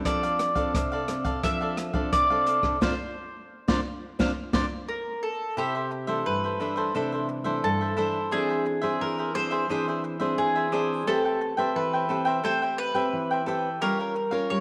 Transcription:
Already playing: C4 D4 A4
0.05 F3 D4 A4 D5 F5, kick, cross-stick, closed hi-hat
0.23 A4 D5 F5, closed hi-hat
0.39 muted cavaquinho stroke, cross-stick, closed hi-hat
0.55 C4 D4 A4 D5 F5, kick, closed hi-hat
0.74 C3 D4 A4 D5 F5, kick, cross-stick, closed hi-hat
0.92 A4 D5 F5
1.08 C4 D4 A4, cross-stick, closed hi-hat
1.24 A4 D5 F5, kick, closed hi-hat
1.43 F3 C4 D4 A4 D5 E5 F5, kick, cross-stick, closed hi-hat
1.61 A4 D5 F5
1.77 muted cavaquinho stroke, cross-stick, closed hi-hat
1.93 C4 D4 A4 D5 F5, kick
2.12 C3 D5, kick, cross-stick, closed hi-hat
2.30 C4 D4 A4 D5 F5
2.46 D4 A4 D5 F5, closed hi-hat
2.63 C4 D4 A4, kick, cross-stick
2.81 C4 D4 F4 C5 D5 F5, kick, snare
3.68 C4 D4 F4 C5 D5 F5, kick, snare
4.19 C4 D4 F4 C5 D5 F5, kick, snare
4.53 C4 D4 F4 C5 D5 F5, kick, snare
4.89 A#4
5.23 A4
5.57 C3 E4 G4 A4 C5 E5
5.75 A4 C5 E5
5.91 muted cavaquinho stroke
6.07 E3 A3 D4 A4 C5 E5
6.26 G2 B4
6.44 A4 C5 E5
6.60 E3 A3 D4 E4 A4 C5 E5
6.76 A4 C5 E5
6.95 C3 E3 A3 D4 E4 A4 C5 E5
7.12 A4 C5 E5
7.29 muted cavaquinho stroke
7.44 E3 A3 D4 A4 C5 E5
7.63 G2 A4
7.81 A4 C5 E5
7.97 E3 A3 D4 E4 A4 C5 E5
8.31 E3 C4 D4 G#4 C5 E5
8.49 G#4 C5 E5
8.65 muted cavaquinho stroke
8.82 C4 D4 G#4 C5 E5
9.01 E3 A#4
9.18 G#4 C5 E5
9.34 C4 D4 G#4 C5 E5
9.51 G#4 C5 E5
9.69 E3 C4 D4 G#4 C5 E5
9.88 G#4 C5 E5
10.04 muted cavaquinho stroke
10.20 C4 D4 G#4 C5 E5
10.38 E3 G#4
10.56 G#4 C5 E5
10.72 C4 D4 G#4 C5 E5
11.07 A3 C4 G4 A4 B4 C5 E5 G5
11.25 C5 E5 G5
11.41 muted cavaquinho stroke
11.57 C4 G4 B4 C5 E5 G5
11.76 E3 B4
11.93 C5 E5 G5
12.09 C4 G4 A4 B4 C5 E5 G5
12.25 C5 E5 G5
12.44 A3 C4 G4 A4 C5 E5 G5
12.62 C5 E5 G5
12.78 B4, muted cavaquinho stroke
12.94 C4 G4 B4 E5 G5
13.13 E3
13.31 C5 E5 G5
13.46 C4 G4 A4 B4 E5 G5
13.81 G3 C#4 F4 G4 A#4 C#5 F5
13.99 A#4 C#5 F5
14.15 muted cavaquinho stroke
14.31 C#4 F4 A#4 C#5 F5
14.50 G3 C#5

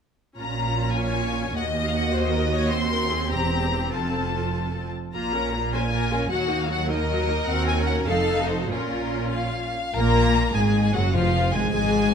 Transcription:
0.37 A#1 A#2 C#4 F4 A#5
0.97 C#5 G#5
1.56 D#2 A#3 F#4 D#5 F#5
1.87 F5
1.94 F#5
2.13 C5 D#5
2.34 A#4
2.52 C#5
2.70 C4 C5 C6
2.91 A#4
3.11 G#4
3.29 E1 E2 G4 A#5
3.91 F1 F2 F4 A4 A5
5.13 A#1 A#2 A#3 F4 A#5
5.34 C#4 A#4
5.53 A#3 F4
5.73 C#4 A#4 C5 G#5
5.92 A#3 F4 A#4
6.12 C#4 F4 A#4
6.30 D#2 F#3 F#4 F#5
6.49 A#3 D#4
6.62 F5
6.69 F#3 F#4 F#5
6.89 A#3 D#4 A#4 D#5
7.09 F#3 F#4
7.28 A#3 D#4
7.47 D#2 C4 F#4 F#5
7.66 G#5
7.78 C#4
7.86 F#5
8.08 F1 F2 D#4 A4 F5
8.40 F#4
8.49 C5
8.70 A#1 A#2 C#4 F4 A#4
9.32 F5
9.94 A#1 A#2 A#3 A#4 A#5
10.53 G#1 G#2 G#3 G#4 G#5
10.93 F#1 F#2 F#3 F#4 F#5
11.14 F1 F2 F3 F4 F5
11.53 G#1 G#2 G#3 G#4 G#5
11.73 G#1 G#2 G#3 G#4 G#5

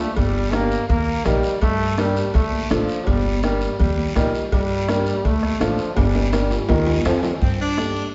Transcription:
0.00 A3
0.16 G1 G3, bombo low, cowbell, high conga, long guiro
0.52 A#3 D4 G4 A#4, bombo rim, cowbell, high conga, short guiro
0.72 short guiro
0.89 D#2 A#3, bombo low, cowbell, high conga, long guiro
1.25 A#1 G3 D#4 G4 A#4, bombo rim, cowbell, high conga, low conga, short guiro
1.43 short guiro
1.61 G2 A3, bombo low, cowbell, high conga, long guiro
1.98 G3 D4 G4 A#4, bombo rim, cowbell, high conga, short guiro
2.17 short guiro
2.34 D2 A3, bombo low, cowbell, high conga, long guiro
2.52 high conga
2.70 A1 F3 D4 F4 A4, bombo rim, cowbell, high conga, short guiro
2.89 short guiro
3.07 G1 G3, bombo low, cowbell, high conga, long guiro
3.25 high conga
3.43 G3 D4 G4 A#4, bombo rim, cowbell, high conga, short guiro
3.61 short guiro
3.79 D#2 G3, bombo low, cowbell, high conga, low conga, long guiro
3.98 high conga
4.15 A#1 G3 D#4 G4 A#4, bombo low, bombo rim, cowbell, high conga, low conga, low timbale, short guiro
4.35 short guiro
4.52 G2 G3, bombo low, cowbell, high conga, long guiro
4.88 D4 G4 A#4, bombo rim, cowbell, high conga, short guiro
5.07 short guiro
5.25 D2 A3, bombo low, cowbell, high conga, long guiro
5.43 bombo rim, high conga
5.60 A1 F3 D4 F4 A4, bombo rim, cowbell, high conga, short guiro
5.78 short guiro
5.97 G1 G3, bombo low, cowbell, high conga, high timbale, long guiro
6.15 high conga, high timbale
6.33 G3 D4 G4 A#4, bombo rim, cowbell, high conga, high timbale, short guiro
6.51 low timbale, short guiro
6.68 D#2 D#3 D#4 G4 A#4, bombo low, cowbell, high conga, low timbale, long guiro
6.87 high conga, low timbale
7.05 F2 F3 C4 F4 A4, bombo rim, cowbell, low conga, low timbale, short guiro
7.23 low conga, low timbale, short guiro
7.41 G2 C4, bombo low, high conga, long guiro
7.61 D4
7.77 D4 G4 A4, bombo rim, high conga, short guiro
7.96 short guiro

